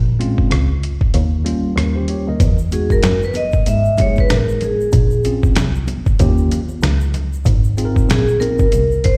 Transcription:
Already playing: A#1
0.19 G#3 C4 C#4 F4, closed hi-hat
0.38 kick
0.51 C#2, cross-stick, closed hi-hat
0.83 closed hi-hat
1.01 kick
1.14 D#2, cross-stick, closed hi-hat
1.44 G3 A#3 C#4 F4, closed hi-hat
1.76 D#2 F4 A#4, cross-stick, closed hi-hat
1.96 G4 C5
2.08 G4 C#5, closed hi-hat
2.28 D#2 A#4 D#5
2.40 E2, kick, closed hi-hat, shaker
2.58 shaker
2.71 G#3 B3 D#4 F#4 G#4, closed hi-hat, shaker
2.90 A#4, kick, shaker
3.03 F#2, snare, closed hi-hat, shaker
3.22 B4, shaker
3.34 D#5, closed hi-hat, high conga, low conga, shaker
3.52 kick, shaker
3.66 G#2 E5, closed hi-hat, high conga, shaker
3.85 shaker
3.98 G#3 B3 D#4 G4 C#5, kick, closed hi-hat, low conga, shaker
4.06 G#4
4.16 kick, high conga, shaker
4.20 B4
4.29 A1 A#4, snare, closed hi-hat, shaker
4.49 shaker
4.61 G#4, closed hi-hat, low conga, shaker
4.81 shaker
4.92 A#1, kick, closed hi-hat, shaker
5.11 shaker
5.24 C4 C#4 F4 G#4, closed hi-hat, shaker
5.43 kick, shaker
5.55 C2, snare, closed hi-hat, shaker
5.75 shaker
5.87 closed hi-hat, high conga, low conga, shaker
6.06 kick, shaker
6.19 D#2 A#3 C#4 F4 G4, kick, closed hi-hat, high conga, shaker
6.38 shaker
6.51 closed hi-hat, low conga, shaker
6.69 high conga, shaker
6.82 C#2, snare, closed hi-hat, shaker
7.01 shaker
7.14 closed hi-hat, low conga, shaker
7.33 shaker
7.45 G#1, kick, closed hi-hat, shaker
7.64 shaker
7.77 C4 D#4 F4 G#4, closed hi-hat, shaker
7.85 A#4
7.96 kick, shaker
8.09 A#1 G#4, snare, closed hi-hat, shaker
8.28 shaker
8.40 C4 D#4 F4 A#4, closed hi-hat, high conga, low conga, shaker
8.58 kick, shaker
8.72 C2, closed hi-hat, high conga, shaker
8.91 shaker
9.04 C5, kick, closed hi-hat, low conga, shaker

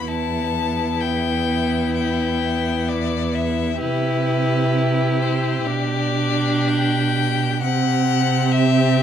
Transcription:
0.07 E2 B3 E4 A5
1.00 G5
1.95 G5
2.88 D5
3.35 E5
3.79 C3 E4 G4 B4
5.22 C5
5.66 B2 D4 D5
6.68 G5
7.61 C3 C4 G4 F#5
8.52 E5

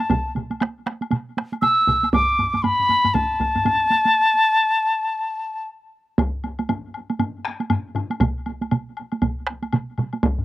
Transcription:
Already playing: A5
0.00 high woodblock
0.10 taiko, taiko mid, taiko high, high woodblock
0.35 taiko mid, taiko high, high woodblock
0.51 taiko high, high woodblock
0.60 taiko rim, taiko high, high woodblock
0.86 taiko rim, taiko high, high woodblock
1.01 taiko high, high woodblock
1.11 taiko mid, taiko high, high woodblock
1.37 taiko rim, taiko high, high woodblock
1.52 taiko high, high woodblock
1.62 E6, taiko mid, taiko high, high woodblock
1.87 taiko, taiko mid, taiko high, high woodblock
2.03 taiko high, high woodblock
2.13 D6, taiko, taiko low-mid, taiko high, high woodblock
2.39 taiko low-mid, taiko high, high woodblock
2.54 D6, taiko low-mid, taiko high, high woodblock
2.63 B5, taiko low-mid, taiko high, high woodblock
2.79 taiko low-mid
2.89 taiko low-mid, taiko high, high woodblock
3.04 taiko low-mid, taiko high, high woodblock
3.14 A5, taiko, taiko low-mid, taiko high, high woodblock
3.40 taiko, taiko high, high woodblock
3.55 taiko low-mid, taiko high, high woodblock
3.65 taiko low-mid, taiko high, high woodblock
3.90 taiko high, high woodblock
4.05 taiko high, high woodblock
6.18 taiko, taiko low-mid, taiko high, high woodblock
6.44 taiko high, high woodblock
6.59 taiko high, high woodblock
6.69 taiko low-mid, taiko high, high woodblock
6.94 high woodblock
7.10 taiko high, high woodblock
7.19 taiko low-mid, taiko high, high woodblock
7.45 taiko rim, high woodblock
7.60 taiko high, high woodblock
7.70 taiko low-mid, taiko high, high woodblock
7.95 taiko low-mid, high woodblock
8.10 taiko high, high woodblock
8.20 taiko, taiko mid, taiko high, high woodblock
8.46 taiko high, high woodblock
8.61 taiko high, high woodblock
8.71 taiko mid, taiko high, high woodblock
8.97 high woodblock
9.12 taiko high, high woodblock
9.22 taiko, taiko mid, taiko high, high woodblock
9.47 taiko rim, high woodblock
9.62 taiko high, high woodblock
9.73 taiko mid, taiko high, high woodblock
9.98 taiko mid, high woodblock
10.13 taiko high, high woodblock
10.23 taiko, taiko low-mid, taiko high, high woodblock
10.38 taiko low-mid

